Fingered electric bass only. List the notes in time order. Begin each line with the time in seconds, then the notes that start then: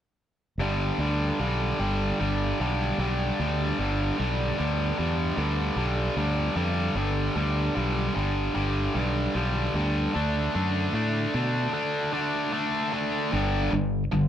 0.58 G1
0.98 D2
1.39 B1
1.79 G1
2.21 G1
2.60 B1
2.98 B1
3.39 D2
3.79 G1
4.19 B1
4.60 D2
4.99 E2
5.37 D2
5.76 B1
6.16 D2
6.56 F2
6.95 G1
7.36 D2
7.77 B1
8.16 G1
8.56 G1
8.95 B1
9.35 B1
9.74 D2
10.16 D2
10.55 F#2
10.93 A2
11.34 B2
13.33 G1
13.73 G1
14.13 G1